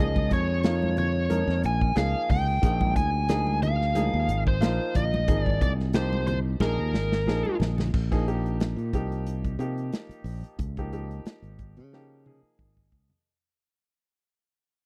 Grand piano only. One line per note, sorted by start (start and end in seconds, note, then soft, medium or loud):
0.00 0.56 F3 medium
0.00 0.56 A#3 medium
0.00 0.56 D#4 medium
0.00 0.57 G#4 medium
0.64 1.22 F3 medium
0.64 1.23 A#3 medium
0.64 1.23 D#4 medium
0.64 1.23 F4 medium
1.30 1.88 F3 medium
1.30 1.88 A#3 medium
1.30 1.89 D#4 medium
1.30 1.88 A#4 medium
1.95 2.54 F3 medium
1.95 2.54 A#3 medium
1.95 2.54 D#4 medium
1.95 2.54 G#4 medium
2.62 3.20 F3 medium
2.62 3.20 A#3 medium
2.62 3.20 D#4 medium
2.62 3.21 G#4 medium
3.29 3.87 F3 medium
3.29 3.87 A#3 medium
3.29 3.87 D#4 medium
3.29 3.87 G#4 medium
3.95 4.53 F3 medium
3.95 4.53 A#3 medium
3.95 4.53 D#4 medium
3.95 4.53 G#4 medium
4.60 5.19 F3 medium
4.60 5.19 A#3 medium
4.60 5.19 D#4 medium
4.60 5.19 F4 medium
5.28 5.86 F3 medium
5.28 5.86 A#3 medium
5.28 5.86 D#4 medium
5.28 5.86 G#4 medium
5.94 6.52 F3 medium
5.94 6.52 A#3 medium
5.94 6.52 D#4 medium
5.94 6.52 G4 medium
6.60 7.18 F3 medium
6.60 7.18 A#3 medium
6.60 7.18 D#4 medium
6.60 7.18 G#4 medium
7.27 7.85 F3 medium
7.27 7.85 A#3 medium
7.27 7.85 D#4 medium
7.27 7.85 G#4 medium
8.11 8.24 F3 medium
8.11 8.25 A#3 medium
8.11 8.24 D#4 medium
8.11 8.24 G#4 medium
8.27 8.92 F3 medium
8.27 8.92 A#3 medium
8.27 8.92 D#4 medium
8.27 8.93 G4 medium
8.93 9.51 F3 medium
8.93 9.51 A#3 medium
8.93 9.51 D#4 medium
8.93 9.52 G4 medium
9.59 10.59 F3 medium
9.59 10.59 A#3 medium
9.59 10.59 D#4 medium
9.59 10.59 G4 medium
10.78 10.91 F3 medium
10.78 10.91 A#3 medium
10.78 10.91 D#4 medium
10.78 10.91 G4 medium
10.93 11.80 F3 medium
10.93 11.80 A#3 medium
10.93 11.80 D#4 medium
10.93 11.80 G4 medium
11.93 12.21 F3 medium
11.93 12.22 A#3 medium
11.93 12.22 D#4 medium
11.93 12.22 G4 medium
12.26 13.26 F3 medium
12.26 13.26 A#3 medium
12.26 13.26 D#4 medium
12.26 13.26 G#4 medium